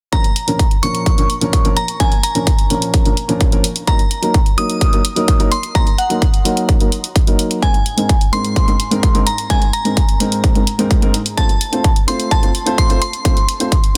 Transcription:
0.12 A#2 F3 A#3 C#4 A#4 A#5, kick, closed hi-hat
0.24 closed hi-hat
0.36 closed hi-hat
0.47 A#2 F3 A#3 C#4 A#4, closed hi-hat
0.59 kick, closed hi-hat
0.71 closed hi-hat
0.82 A#2 F3 A#3 C#4 A#4 C#6, closed hi-hat
0.95 closed hi-hat
1.06 kick, closed hi-hat
1.17 A#2 F3 A#3 C#4 A#4, closed hi-hat
1.30 closed hi-hat
1.41 A#2 F3 A#3 C#4 A#4, closed hi-hat
1.53 kick, closed hi-hat
1.64 A#2 F3 A#3 C#4 A#4, closed hi-hat
1.77 A#5, closed hi-hat
1.88 closed hi-hat
1.99 A#2 F3 A#3 C#4 A#4 G#5, kick, closed hi-hat
2.12 closed hi-hat
2.23 A#5, closed hi-hat
2.35 A#2 F3 A#3 C#4 A#4, closed hi-hat
2.47 kick, closed hi-hat
2.59 closed hi-hat
2.70 A#2 F3 A#3 C#4 A#4, closed hi-hat
2.82 closed hi-hat
2.94 kick, closed hi-hat
3.05 A#2 F3 A#3 C#4 A#4, closed hi-hat
3.17 closed hi-hat
3.28 A#2 F3 A#3 C#4 A#4, closed hi-hat
3.41 kick, closed hi-hat
3.52 A#2 F3 A#3 C#4 A#4, closed hi-hat
3.64 closed hi-hat
3.76 closed hi-hat
3.87 F#3 A#3 D#4 A#4 A#5, kick, closed hi-hat
3.99 closed hi-hat
4.11 closed hi-hat
4.22 F#3 A#3 D#4 A#4, closed hi-hat
4.34 kick, closed hi-hat
4.46 closed hi-hat
4.57 F#3 A#3 D#4 A#4 D#6, closed hi-hat
4.70 closed hi-hat
4.81 kick, closed hi-hat
4.92 F#3 A#3 D#4 A#4, closed hi-hat
5.05 closed hi-hat
5.16 F#3 A#3 D#4 A#4, closed hi-hat
5.28 kick, closed hi-hat
5.39 F#3 A#3 D#4 A#4, closed hi-hat
5.52 C6, closed hi-hat
5.63 closed hi-hat
5.74 F#3 A#3 D#4 A#4 A#5, kick, closed hi-hat
5.87 closed hi-hat
5.98 F#5, closed hi-hat
6.10 F#3 A#3 D#4 A#4, closed hi-hat
6.22 kick, closed hi-hat
6.34 closed hi-hat
6.45 F#3 A#3 D#4 A#4, closed hi-hat
6.57 closed hi-hat
6.69 kick, closed hi-hat
6.80 F#3 A#3 D#4 A#4, closed hi-hat
6.92 closed hi-hat
7.04 closed hi-hat
7.16 kick, closed hi-hat
7.27 F#3 A#3 D#4 A#4, closed hi-hat
7.39 closed hi-hat
7.51 closed hi-hat
7.62 G#2 G#3 C4 D#4 A#4 G#5, kick, closed hi-hat
7.74 closed hi-hat
7.86 closed hi-hat
7.97 G#2 G#3 C4 D#4 A#4, closed hi-hat
8.09 kick, closed hi-hat
8.21 closed hi-hat
8.32 G#2 G#3 C4 D#4 A#4 C6, closed hi-hat
8.45 closed hi-hat
8.56 kick, closed hi-hat
8.67 G#2 G#3 C4 D#4 A#4, closed hi-hat
8.80 closed hi-hat
8.91 G#2 G#3 C4 D#4 A#4, closed hi-hat
9.03 kick, closed hi-hat
9.14 G#2 G#3 C4 D#4 A#4, closed hi-hat
9.27 A#5, closed hi-hat
9.38 closed hi-hat
9.49 G#2 G#3 C4 D#4 A#4 G#5, kick, closed hi-hat
9.62 closed hi-hat
9.73 A#5, closed hi-hat
9.85 G#2 G#3 C4 D#4 A#4, closed hi-hat
9.97 kick, closed hi-hat
10.09 closed hi-hat
10.20 G#2 G#3 C4 D#4 A#4, closed hi-hat
10.32 closed hi-hat
10.44 kick, closed hi-hat
10.55 G#2 G#3 C4 D#4 A#4, closed hi-hat
10.67 closed hi-hat
10.78 G#2 G#3 C4 D#4 A#4, closed hi-hat
10.91 kick, closed hi-hat
11.02 G#2 G#3 C4 D#4 A#4, closed hi-hat
11.14 closed hi-hat
11.26 closed hi-hat
11.37 A3 C4 F4 C5 A5, kick, closed hi-hat
11.49 closed hi-hat
11.61 closed hi-hat
11.72 A3 C4 F4 C5, closed hi-hat
11.84 kick, closed hi-hat
11.96 closed hi-hat
12.07 A3 C4 F4 C5 C6, closed hi-hat
12.20 closed hi-hat
12.31 A5, kick, closed hi-hat
12.42 A3 C4 F4 C5, closed hi-hat
12.55 closed hi-hat
12.66 A3 C4 F4 C5, closed hi-hat
12.78 C6, kick, closed hi-hat
12.89 A3 C4 F4 C5, closed hi-hat
13.02 C6, closed hi-hat
13.13 closed hi-hat
13.24 A3 C4 F4 C5, kick, closed hi-hat
13.37 closed hi-hat
13.49 closed hi-hat
13.60 A3 C4 F4 C5, closed hi-hat
13.72 kick, closed hi-hat
13.84 closed hi-hat

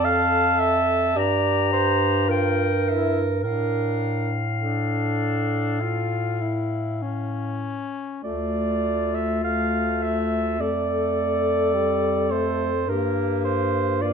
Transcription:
Already playing: F2 A4
0.04 F5 A5
0.60 E5
1.16 G2 G4 D5 A#5
1.73 C5
2.28 F4 A#4 G5
2.87 E4 E5
3.43 A2 D4 A#4 F5
4.61 D4 A4
5.81 F4
6.41 E4
7.03 C#4
8.23 D2 A3 F4 D5
9.15 E5
9.43 A3 F5
10.03 E5
10.59 F2 A3 A4 D5
11.74 G3
12.31 A3 C5
12.88 G2 A#3 G4 A#4
13.44 C5
14.02 A#3 F4 D5

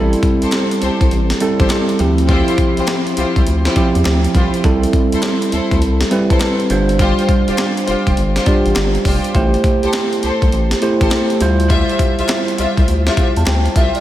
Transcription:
Already playing: A1 G3 E4 A4
0.01 C4
0.13 closed hi-hat
0.23 kick, closed hi-hat
0.42 C2 G4 A4 C5, closed hi-hat
0.52 snare, clap, closed hi-hat
0.71 closed hi-hat
0.81 C2 G4 A4 C5, closed hi-hat
1.01 C2, kick, closed hi-hat
1.11 A1, closed hi-hat
1.30 snare, closed hi-hat
1.40 G3 C4 E4 A4, closed hi-hat
1.60 A1 G4 A4 C5, kick, closed hi-hat
1.70 snare, clap, closed hi-hat
1.89 closed hi-hat
1.99 D2 F3 C4 E4 G4, closed hi-hat
2.18 closed hi-hat
2.29 E4 F4 G4 C5, kick, closed hi-hat
2.48 closed hi-hat
2.58 kick, closed hi-hat
2.77 C2 E4 F4 G4 C5, closed hi-hat
2.87 snare, clap, closed hi-hat
3.07 closed hi-hat
3.17 C2 E4 F4 G4 C5, closed hi-hat
3.36 C2, kick, closed hi-hat
3.47 D2, closed hi-hat
3.65 E4 F4 G4 C5, snare, closed hi-hat
3.76 F3 C4 E4 G4, kick, closed hi-hat
3.95 E2, closed hi-hat
4.05 D2, snare, clap, closed hi-hat
4.24 closed hi-hat
4.35 C2 E4 F4 G4 C5, kick, closed hi-hat
4.54 closed hi-hat
4.64 C2 G3 C4 E4 A4, kick, closed hi-hat
4.83 closed hi-hat
4.93 kick, closed hi-hat
5.12 D2 E4 A4 C5, closed hi-hat
5.23 snare, clap, closed hi-hat
5.42 closed hi-hat
5.52 D2 E4 A4 C5, closed hi-hat
5.71 D2, kick, closed hi-hat
5.82 C2, closed hi-hat
6.01 snare, closed hi-hat
6.11 G3 C4 E4 B4, closed hi-hat
6.30 C2 E4 A4 C5, kick, closed hi-hat
6.40 snare, clap, closed hi-hat
6.60 closed hi-hat
6.70 G1 G3 D4 F4 C5, closed hi-hat
6.89 closed hi-hat
6.99 F4 G4 C5, kick, closed hi-hat
7.19 closed hi-hat
7.29 kick, closed hi-hat
7.48 F1 F4 G4 C5, closed hi-hat
7.58 snare, clap, closed hi-hat
7.77 closed hi-hat
7.87 F1 F4 G4 C5, closed hi-hat
8.07 F1, kick, closed hi-hat
8.17 G1, closed hi-hat
8.36 F4 G4 C5, snare, closed hi-hat
8.46 G3 D4 F4 G4, kick, closed hi-hat
8.66 A1, closed hi-hat
8.76 G1, snare, clap, closed hi-hat
8.95 closed hi-hat
9.05 F1 F4 G4 C5, kick, open hi-hat
9.24 closed hi-hat
9.35 A1 A3 E4 G4 C5, kick, closed hi-hat
9.54 closed hi-hat
9.64 kick, closed hi-hat
9.83 C2 G4 A4 C5, closed hi-hat
9.93 snare, clap, closed hi-hat
10.13 closed hi-hat
10.23 C2 G4 A4 C5, closed hi-hat
10.42 C2, kick, closed hi-hat
10.52 A1, closed hi-hat
10.71 snare, closed hi-hat
10.82 A3 E4 G4 C5, closed hi-hat
11.01 A1 G4 A4 C5, kick, closed hi-hat
11.11 snare, clap, closed hi-hat
11.30 closed hi-hat
11.41 D2 G3 E4 F4 C5, closed hi-hat
11.60 closed hi-hat
11.70 F4 G4 C5 E5, kick, closed hi-hat
11.89 closed hi-hat
11.99 kick, closed hi-hat
12.18 C2 F4 G4 C5 E5, closed hi-hat
12.29 snare, clap, closed hi-hat
12.48 closed hi-hat
12.58 C2 F4 G4 C5 E5, closed hi-hat
12.77 C2, kick, closed hi-hat
12.88 D2, closed hi-hat
13.07 F4 G4 C5 E5, snare, closed hi-hat
13.17 kick, closed hi-hat
13.36 E2 A5, closed hi-hat
13.46 D2 G5, snare, clap, closed hi-hat
13.66 closed hi-hat
13.76 C2 F4 G4 C5 E5, kick, closed hi-hat
13.95 D5, closed hi-hat

